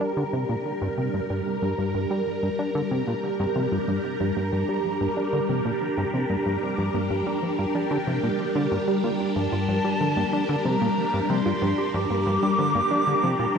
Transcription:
0.00 0.13 F3 loud
0.00 13.58 G3 medium
0.00 13.58 D4 medium
0.00 0.12 D4 medium
0.00 13.58 G4 medium
0.00 13.58 A#4 medium
0.17 0.24 D3 loud
0.17 0.29 G4 loud
0.33 0.45 C3 medium
0.33 0.40 F3 medium
0.49 0.56 A#2 medium
0.49 0.64 A#3 medium
0.65 0.73 F3 medium
0.81 0.88 G2 loud
0.81 0.97 D4 medium
0.97 1.09 C3 medium
0.97 1.05 F3 medium
1.13 1.21 G2 medium
1.13 1.29 A#3 loud
1.30 1.41 G2 medium
1.30 1.42 F3 medium
1.46 1.61 D4 medium
1.62 1.74 G2 medium
1.62 1.74 F3 loud
1.78 1.94 G2 medium
1.78 1.93 F4 loud
1.94 2.06 G2 medium
1.94 2.07 F3 loud
2.10 2.22 G3 medium
2.10 2.23 G4 loud
2.26 2.34 F3 medium
2.43 2.50 G2 medium
2.43 2.58 A#3 medium
2.59 2.66 F3 medium
2.59 2.70 D4 medium
2.75 2.82 D3 loud
2.75 2.90 D4 medium
2.91 3.03 C3 medium
2.91 2.99 F3 medium
3.07 3.14 A#2 medium
3.07 3.23 A#3 medium
3.23 3.36 F3 medium
3.39 3.46 G2 loud
3.39 3.55 D4 medium
3.56 3.67 C3 medium
3.56 3.68 F3 loud
3.72 3.79 G2 medium
3.72 3.87 F4 loud
3.88 3.99 G2 medium
3.88 4.00 F3 loud
4.04 4.16 G4 loud
4.20 4.32 G2 medium
4.20 4.28 F3 medium
4.36 4.52 G2 medium
4.36 4.52 A#3 medium
4.52 4.64 G2 medium
4.52 4.60 F3 medium
4.68 4.80 G3 medium
4.68 4.84 D4 medium
4.85 4.92 F3 medium
5.01 5.08 G2 medium
5.01 5.16 A#3 medium
5.17 5.29 F3 medium
5.17 5.28 D4 medium
5.33 5.40 D3 loud
5.33 5.48 D4 medium
5.49 5.61 C3 medium
5.49 5.62 F3 loud
5.65 5.72 A#2 medium
5.65 5.81 F4 loud
5.81 5.94 F3 loud
5.98 6.04 G2 loud
5.98 6.10 G4 loud
6.14 6.25 C3 medium
6.14 6.21 F3 medium
6.30 6.37 G2 medium
6.30 6.45 A#3 medium
6.46 6.57 G2 medium
6.46 6.53 F3 medium
6.62 6.77 D4 medium
6.78 6.90 G2 medium
6.78 6.86 F3 medium
6.94 7.10 G2 medium
6.94 7.10 A#3 loud
7.10 7.22 G2 medium
7.10 7.23 F3 medium
7.26 7.38 G3 medium
7.26 7.42 D4 medium
7.43 7.55 F3 loud
7.59 7.66 G2 medium
7.59 7.74 F4 loud
7.75 7.87 F3 loud
7.75 7.86 D4 medium
7.91 7.98 D3 loud
7.91 8.04 G4 loud
8.07 8.19 C3 medium
8.07 8.15 F3 medium
8.23 8.30 A#2 medium
8.23 8.39 A#3 medium
8.40 8.47 F3 medium
8.55 8.67 D3 loud
8.55 8.63 D4 medium
8.71 8.79 G2 medium
8.71 8.84 G3 medium
8.88 9.03 G3 medium
8.88 8.95 G4 loud
9.04 9.11 A#3 medium
9.04 9.19 F4 loud
9.20 9.35 D4 medium
9.36 9.48 G2 medium
9.36 9.49 F3 medium
9.36 10.67 A5 loud
9.52 9.68 G2 medium
9.52 9.68 F4 loud
9.68 9.80 G2 medium
9.68 9.81 F3 loud
9.84 9.96 G3 medium
9.84 9.97 G4 loud
10.01 10.16 D3 medium
10.01 10.08 F3 medium
10.17 10.24 G2 medium
10.17 10.32 A#3 medium
10.33 10.41 F3 medium
10.33 10.44 D4 medium
10.49 10.56 D3 medium
10.49 10.64 D4 medium
10.65 10.77 C3 medium
10.65 10.73 F3 medium
10.65 11.31 A#5 loud
10.81 10.88 A#2 medium
10.81 10.97 A#3 loud
10.97 11.10 F3 medium
11.14 11.21 G2 loud
11.14 11.29 D4 medium
11.30 11.41 C3 medium
11.30 11.42 F3 loud
11.30 11.96 C6 loud
11.46 11.53 G2 medium
11.46 11.61 F4 loud
11.62 11.73 G2 medium
11.62 11.74 F3 loud
11.78 11.91 G4 loud
11.94 12.06 G2 medium
11.94 12.02 F3 medium
11.94 13.55 D6 loud
12.10 12.26 G2 medium
12.10 12.26 A#3 medium
12.27 12.38 G2 medium
12.27 12.34 F3 medium
12.43 12.54 G3 medium
12.43 12.58 D4 medium
12.59 12.74 D3 medium
12.59 12.66 F3 medium
12.75 12.82 G2 medium
12.75 12.90 A#3 loud
12.91 13.04 F3 medium
12.91 13.03 D4 medium
13.07 13.14 D3 loud
13.07 13.23 D4 medium
13.23 13.35 C3 medium
13.23 13.36 F3 loud
13.39 13.46 A#2 medium
13.39 13.55 F4 loud

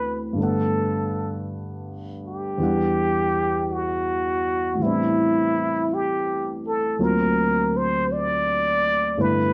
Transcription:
0.00 0.38 D2 soft
0.00 0.38 A2 soft
0.00 0.38 E3 soft
0.00 0.38 B3 soft
0.00 0.38 C4 soft
0.00 0.38 F#4 medium
0.00 0.21 B4 medium
0.33 2.57 G2 soft
0.33 2.58 D3 soft
0.38 2.59 A3 soft
0.38 2.61 B3 soft
0.38 1.46 A4 medium
0.43 2.62 F#5 soft
2.27 3.74 G4 medium
2.58 4.79 E2 soft
2.58 4.76 E3 soft
2.58 4.78 G3 soft
2.62 4.81 D4 soft
2.62 4.82 F#5 medium
3.73 4.84 F#4 medium
4.75 6.97 A2 soft
4.75 6.99 E3 soft
4.80 7.00 G3 soft
4.80 7.01 B3 soft
4.80 5.95 E4 medium
4.85 6.98 C4 soft
4.85 7.03 D4 soft
5.94 6.55 G4 medium
6.67 7.05 A4 medium
6.99 9.16 D2 soft
6.99 9.16 D3 soft
6.99 9.16 F#3 soft
6.99 9.17 A#3 soft
6.99 9.17 C4 soft
6.99 9.17 F4 soft
7.03 7.79 A#4 medium
7.77 8.14 C5 medium
8.12 9.23 D5 medium
9.17 9.53 G2 soft
9.17 9.53 D3 soft
9.17 9.53 A3 soft
9.17 9.53 B3 soft
9.17 9.53 E4 soft
9.17 9.53 B4 medium

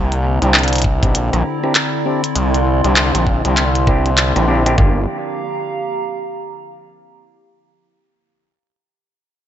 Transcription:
0.00 0.39 C2 loud
0.00 4.74 D3 medium
0.00 4.75 C4 medium
0.00 4.75 E4 loud
0.00 4.78 E4 medium
0.00 1.11 G4 medium
0.00 1.90 A#5 medium
0.12 closed hi-hat soft
0.28 4.78 D5 medium
0.42 1.04 C2 loud
0.42 0.98 C4 medium
0.42 0.98 D4 medium
0.42 0.98 E4 medium
0.42 0.98 G4 medium
0.42 closed hi-hat soft
0.54 clap loud
0.54 closed hi-hat soft
0.59 closed hi-hat soft
0.64 closed hi-hat soft
0.68 closed hi-hat medium
0.73 closed hi-hat medium
0.76 closed hi-hat medium
0.78 closed hi-hat medium
0.82 kick loud
0.82 closed hi-hat medium
1.03 1.30 B1 loud
1.03 1.59 C4 medium
1.03 1.59 D4 medium
1.03 1.59 E4 medium
1.03 1.59 G4 medium
1.03 kick loud
1.03 closed hi-hat soft
1.15 closed hi-hat medium
1.33 1.43 A#1 loud
1.33 cross-stick medium
1.33 closed hi-hat soft
1.63 1.73 C4 medium
1.63 1.73 D4 medium
1.63 1.74 E4 medium
1.63 1.73 G4 medium
1.63 cross-stick soft
1.75 clap loud
1.75 closed hi-hat medium
1.95 4.78 C6 medium
2.06 2.21 C4 medium
2.06 2.22 D4 medium
2.06 2.21 E4 medium
2.06 2.22 G4 medium
2.24 closed hi-hat medium
2.35 2.81 C2 loud
2.35 closed hi-hat medium
2.54 closed hi-hat soft
2.84 3.12 C2 loud
2.84 3.41 C4 medium
2.84 3.41 D4 medium
2.84 3.41 E4 medium
2.84 3.41 G4 medium
2.84 closed hi-hat soft
2.96 clap loud
2.96 closed hi-hat medium
3.15 3.42 A#1 loud
3.15 closed hi-hat medium
3.27 kick medium
3.45 4.33 C2 loud
3.45 3.64 C4 medium
3.45 3.64 D4 medium
3.45 3.64 E4 medium
3.45 3.64 G4 medium
3.45 closed hi-hat soft
3.57 clap medium
3.57 closed hi-hat medium
3.75 closed hi-hat soft
3.87 4.10 C4 loud
3.87 4.10 D4 medium
3.87 4.10 E4 medium
3.87 4.10 G4 loud
3.87 kick loud
3.87 cross-stick medium
4.06 closed hi-hat soft
4.18 clap loud
4.18 closed hi-hat medium
4.36 4.76 A#1 loud
4.36 4.46 C4 medium
4.36 4.46 D4 medium
4.36 4.46 E4 medium
4.36 4.46 G4 medium
4.36 cross-stick medium
4.36 closed hi-hat soft
4.48 4.64 C4 medium
4.48 4.64 D4 medium
4.48 4.64 E4 medium
4.48 4.64 G4 loud
4.66 4.76 C4 medium
4.66 4.76 D4 medium
4.66 4.76 E4 medium
4.66 4.76 G4 loud
4.66 cross-stick soft
4.66 closed hi-hat medium
4.78 5.06 G1 loud
4.78 5.02 A#3 medium
4.78 5.02 D4 medium
4.78 5.02 F4 medium
4.78 5.02 G4 medium
4.78 7.17 G4 medium
4.78 kick loud
4.78 floor tom loud
4.89 7.16 F5 medium
4.99 7.16 A#5 medium

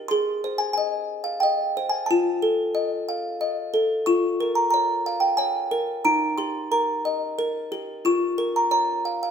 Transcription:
0.00 0.11 G4 medium
0.00 0.11 A#4 medium
0.00 0.11 D#5 medium
0.08 1.43 G#4 medium
0.08 0.61 C6 medium
0.44 1.76 C5 medium
0.58 0.66 G#5 medium
0.73 1.21 G#5 medium
0.78 1.42 D#5 medium
1.24 1.42 F5 medium
1.40 2.09 D#5 medium
1.40 1.93 G5 medium
1.77 2.10 C5 medium
1.89 1.98 G#5 medium
2.06 3.36 A5 medium
2.11 3.42 F4 medium
2.42 3.72 A4 medium
2.75 3.40 D#5 medium
3.09 4.07 F5 medium
3.41 4.07 D#5 medium
3.74 4.07 A4 medium
4.06 5.39 F4 medium
4.06 4.52 C#6 loud
4.40 5.70 A#4 medium
4.55 4.69 A#5 medium
4.70 5.37 C#5 medium
4.70 5.23 A#5 medium
5.06 6.06 F5 medium
5.20 5.39 G5 medium
5.37 6.05 C#5 medium
5.37 6.07 G#5 medium
5.71 6.05 A#4 medium
6.05 7.39 D#4 medium
6.05 6.36 A#5 medium
6.38 7.71 G4 medium
6.38 6.73 C6 medium
6.72 7.37 A#4 medium
6.72 7.68 A#5 medium
7.05 8.06 D#5 medium
7.39 8.06 A#4 medium
7.72 8.06 G4 medium
8.05 9.31 F4 medium
8.05 8.58 C#6 medium
8.38 9.31 A#4 medium
8.56 8.70 A#5 medium
8.71 9.31 C#5 medium
8.71 9.19 A#5 medium
9.05 9.22 F5 medium
9.23 9.31 F5 medium

